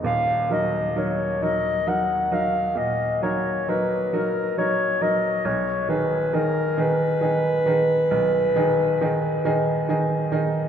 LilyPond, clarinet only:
\new Staff \with { instrumentName = "Clarinet" } { \time 12/8 \key ees \minor \tempo 4. = 45 f''8 ees''8 des''8 ees''8 ges''8 f''8 ees''8 des''8 ces''8 bes'8 des''8 ees''8 | des''8 ces''8 bes'8 ces''1 r8 | }